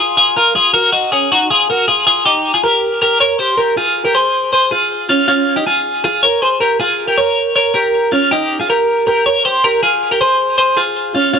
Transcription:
Already playing: G#4
0.00 F4
0.17 F4 G#4
0.37 F4 A#4
0.55 F4 G#4
0.74 F#4 A#4
0.92 D#4 F#4
1.12 C#4 G#4
1.32 D#4 F#4
1.50 F4 G#4
1.70 F#4 A#4
1.88 F4 G#4
2.07 F4 G#4
2.26 D#4 G4
2.54 F4 G#4
2.64 G4 A#4
3.02 G4 A#4
3.20 A#4 C#5
3.39 G4 C5
3.58 G4 A#4
3.77 F4 G#4
4.05 G4 A#4
4.15 G#4 C5
4.53 G#4 C5
4.71 F4 G#4
5.09 C#4 F4
5.28 C#4 F4
5.56 D#4 G4
5.67 F4 G#4
6.04 F4 G#4
6.23 A#4 C#5
6.42 G#4 C5
6.61 G4 A#4
6.80 F4 G#4
7.08 G4 A#4
7.18 A#4 C#5
7.56 A#4 C#5
7.74 G4 A#4
8.12 C#4 F4
8.31 D#4 G4
8.60 F4 G#4
8.70 G4 A#4
9.07 G4 A#4
9.26 A#4 C#5
9.45 G4 C5
9.64 G4 A#4
9.83 F4 G#4
10.11 G4 A#4
10.21 G#4 C5
10.58 G#4 C5
10.77 F4 G#4
11.15 C#4 F4
11.34 C#4 F4

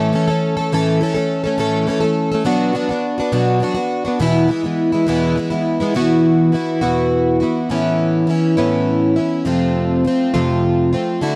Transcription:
Already playing: A2 E3 A3 C#4 A4
0.13 E3 A3 C#4 A4
0.28 A3 C#4 A4
0.57 A3 C#4 A4
0.72 A2 E3 A3 C#4 A4
1.01 E3 A3 C#4 A4
1.14 A3 C#4 A4
1.44 A3 C#4 A4
1.58 A2 E3 A3 C#4 A4
1.87 E3 A3 C#4 A4
2.00 A3 C#4 A4
2.32 A3 C#4 A4
2.45 B2 F#3 B3 D4 F#4
2.73 F#3 B3 D4 F#4
2.89 B3 D4 F#4
3.18 B3 D4 F#4
3.32 B2 F#3 B3 D4 F#4
3.60 F#3 B3 D4 F#4
3.74 B3 D4 F#4
4.05 B3 D4 F#4
4.20 E2 B2 E3 G#3 B3 E4
4.48 E3 G#3 B3 E4
4.63 E3 G#3 B3 E4
4.92 E3 G#3 B3 E4
5.07 E2 B2 E3 G#3 B3 E4
5.36 E3 G#3 B3 E4
5.50 E3 G#3 B3 E4
5.80 E3 G#3 B3 E4
5.94 E2 B2 E3 B3 E4 F#4
6.52 E3 B3 E4 F#4
6.81 E2 B2 E3 B3 E4 F#4
7.40 E3 B3 E4 F#4
7.70 A2 E3 B3 C#4 E4
8.27 E3 B3 C#4 E4
8.57 A2 E3 B3 C#4 E4
9.16 B3 C#4 E4
9.45 F2 C3 F3 A3 C4 F4
10.05 F3 A3 C4 F4
10.34 F2 C3 F3 A3 C4 F4
10.93 F3 A3 C4 F4
11.21 D3 A3 E4 F#4

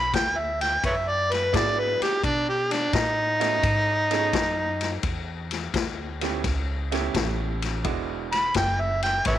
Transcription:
Already playing: B1 B5
0.13 D2 G5, kick, snare, ride
0.38 E5
0.61 G5, snare, ride
0.83 F#2 B4 C#5 E5, kick, ride
1.08 D5
1.32 B4, snare, ride
1.52 G#2 F#3 B3 D4 E4 G#4 D5, kick, snare, ride
1.79 B4
2.01 G4, muted upright bass stroke, snare, ride
2.23 B2 D4, kick, ride
2.49 G4
2.71 D4, snare, ride
2.93 A2 D#4, kick, snare, ride
3.40 A3 B3 C#4 D#4 F#4, snare, ride
3.63 G#2, kick, ride
4.11 B3 C#4 D#4 G#4 A4, snare, ride
4.33 F#2, kick, snare, ride
4.81 snare, ride
5.03 E2, kick, ride
5.51 snare, ride
5.74 D2, kick, snare, ride
6.21 A3 B3 C#4 E4 G4, snare, ride
6.44 C#2, kick, snare, ride
6.91 A3 B3 C#4 E4 G4, snare, ride
7.14 A1, kick, snare, ride
7.62 snare, ride
7.84 E1 G#3 B3 D4 E4 F#4, kick, ride
8.32 B5, snare, ride
8.54 F#1 G5, kick, snare, ride
8.80 E5
9.03 G5, snare, ride
9.25 G#1 B4 C#5 E5, kick, snare, ride

